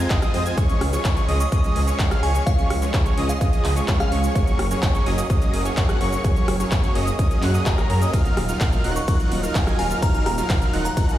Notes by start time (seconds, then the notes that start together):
0.10 F1 G#3 C4 F4 C5 D#5 D#6, kick, clap, closed hi-hat, shaker
0.22 cross-stick, closed hi-hat, shaker
0.34 F2 G#3 C4 F4 C5 D#5 D#6, open hi-hat
0.46 G#3 C4 F4 C5 G#5 G#6, closed hi-hat, shaker
0.58 C#2 F3 G#3 C#4 G#4 C#5 C#6, kick, closed hi-hat, shaker
0.69 closed hi-hat, shaker
0.81 C#2, cross-stick, open hi-hat
0.93 F3 G#3 C#4 G#4 C#5 C#6, closed hi-hat, shaker
1.05 C#2, kick, clap, closed hi-hat, shaker
1.17 F3 G#3 C#4 G#4 C#5 C#6, closed hi-hat, shaker
1.28 C#2 F3 G#3 C#4 G#4 D#5 D#6, open hi-hat
1.40 C#6, closed hi-hat, shaker
1.52 C#2 F3 G#3 C#4 G#4 D#5 C#6 D#6, kick, closed hi-hat, shaker
1.64 F3 G#3 C#4 G#4 D#5 D#6, closed hi-hat, shaker
1.76 C#2, open hi-hat
1.88 F3 G#3 C#4 G#4 C#5 C#6, closed hi-hat, shaker
1.99 C#2, kick, clap, closed hi-hat, shaker
2.11 F3 G#3 C#4 G#4 F5 F6, cross-stick, closed hi-hat, shaker
2.23 C#2 F3 G#3 C#4 G#4 C#5 G#5 C#6, open hi-hat
2.35 closed hi-hat, shaker
2.46 C#2 F3 G#3 C#4 G#4 C#5 F5 C#6, kick, closed hi-hat, shaker
2.59 closed hi-hat, shaker
2.70 C#2, cross-stick, open hi-hat
2.82 F3 G#3 C#4 G#4 C#5 C#6, closed hi-hat, shaker
2.94 C#2, kick, clap, closed hi-hat, shaker
3.06 F3 G#3 C#4 G#4 C#5 C#6, closed hi-hat, shaker
3.17 C#2 F3 G#3 C#4 G#4 D#5 D#6, open hi-hat
3.29 F5, closed hi-hat, shaker
3.41 C#2 F3 G#3 C#4 G#4 D#5 D#6, kick, closed hi-hat, shaker
3.53 F3 G#3 C#4 G#4 D#5 D#6, closed hi-hat, shaker
3.64 C#2, clap, open hi-hat
3.77 F3 G#3 C#4 G#4 C#5 C#6, closed hi-hat, shaker
3.88 C#2, kick, clap, closed hi-hat, shaker
4.00 F3 G#3 C#4 G#4 F5 F6, cross-stick, closed hi-hat, shaker
4.12 C#2 F3 G#3 C#4 G#4 C#5 C#6, open hi-hat
4.24 closed hi-hat, shaker
4.35 F#1 F#3 A#3 C#4 G#4 C#5 C#6, kick, closed hi-hat, shaker
4.47 closed hi-hat, shaker
4.59 F#1, cross-stick, open hi-hat
4.71 F#3 A#3 C#4 G#4 C#5 C#6, closed hi-hat, shaker
4.83 F#1, kick, clap, closed hi-hat, shaker
4.95 F#3 A#3 C#4 G#4 C#5 C#6, closed hi-hat, shaker
5.06 F#1 F#3 A#3 C#4 G#4 D#5 D#6, open hi-hat
5.18 closed hi-hat, shaker
5.30 F#1 F#3 A#3 C#4 G#4 D#5 D#6, kick, closed hi-hat, shaker
5.42 F#3 A#3 C#4 G#4 D#5 D#6, closed hi-hat, shaker
5.54 F#1, open hi-hat
5.65 F#3 A#3 C#4 G#4 C#5 C#6, closed hi-hat, shaker
5.77 F#1, kick, clap, closed hi-hat, shaker
5.89 F#3 A#3 C#4 G#4 F#5 F#6, cross-stick, closed hi-hat, shaker
6.01 F#1 F#3 A#3 C#4 G#4 C#5 C#6, open hi-hat
6.13 closed hi-hat, shaker
6.24 F#1 F#3 A#3 C#4 G#4 C#5 C#6, kick, closed hi-hat, shaker
6.36 closed hi-hat, shaker
6.48 F#1, cross-stick, open hi-hat
6.60 F#3 A#3 C#4 G#4 C#5 C#6, closed hi-hat, shaker
6.71 F#1, kick, clap, closed hi-hat, shaker
6.83 F#3 A#3 C#4 G#4 C#5 C#6, closed hi-hat, shaker
6.95 F#1 F#3 A#3 C#4 G#4 D#5 D#6, open hi-hat
7.07 closed hi-hat, shaker
7.19 F#1 F#3 A#3 C#4 G#4 D#5 D#6, kick, closed hi-hat, shaker
7.31 F#3 A#3 C#4 G#4 D#5 D#6, closed hi-hat, shaker
7.42 F#2 F#3 A#3 C#4 G#4 F#5 F#6, clap, open hi-hat
7.54 F#3 A#3 C#4 G#4 D#5 D#6, closed hi-hat, shaker
7.66 F#1 F#3 A#3 C#4 G#4 A#4 A#5, kick, clap, closed hi-hat, shaker
7.78 cross-stick, closed hi-hat, shaker
7.90 F#2 F#3 A#3 C#4 G#4 A#4 A#5, open hi-hat
8.02 F#3 A#3 C#4 G#4 D#5 D#6, closed hi-hat, shaker
8.13 D#1 F#3 D#4 F4 A#4 F5 F6, kick, closed hi-hat, ride, shaker
8.25 closed hi-hat, shaker
8.37 D#1, cross-stick, open hi-hat
8.49 F#3 D#4 F4 A#4 F5 F6, closed hi-hat, shaker
8.60 D#1, kick, clap, closed hi-hat, ride, shaker
8.72 F#3 D#4 F4 A#4 F5 F6, closed hi-hat, shaker
8.84 D#1 F#3 D#4 F4 A#4 F#5 F#6, open hi-hat
8.96 C#6, closed hi-hat, shaker
9.08 D#1 F#3 D#4 F4 A#4 F#5 C#6 F#6, kick, closed hi-hat, ride, shaker
9.20 F#3 D#4 F4 A#4 F#5 F#6, closed hi-hat, shaker
9.32 D#1, open hi-hat
9.43 F#3 D#4 F4 A#4 F5 F6, closed hi-hat, shaker
9.55 D#1, kick, clap, closed hi-hat, ride, shaker
9.67 F#3 D#4 F4 A#4 G#5 G#6, cross-stick, closed hi-hat, shaker
9.79 D#1 F#3 D#4 F4 A#4 F5 G#5 F6, open hi-hat
9.91 closed hi-hat, shaker
10.02 D#1 F#3 D#4 F4 A#4 F5 A#5 F6, kick, closed hi-hat, ride, shaker
10.14 A#5, closed hi-hat, shaker
10.26 D#1 A#5, cross-stick, open hi-hat
10.38 F#3 D#4 F4 A#4 F5 F6, closed hi-hat, shaker
10.50 D#1, kick, clap, closed hi-hat, ride, shaker
10.61 F#3 D#4 F4 A#4 F5 F6, closed hi-hat, shaker
10.73 D#1 F#3 D#4 F4 A#4 F#5 F#6, open hi-hat
10.85 A#5, closed hi-hat, shaker
10.97 D#1 F#3 D#4 F4 A#4 F#5 F#6, kick, closed hi-hat, ride, shaker
11.09 F#3 D#4 F4 A#4 F#5 F#6, closed hi-hat, shaker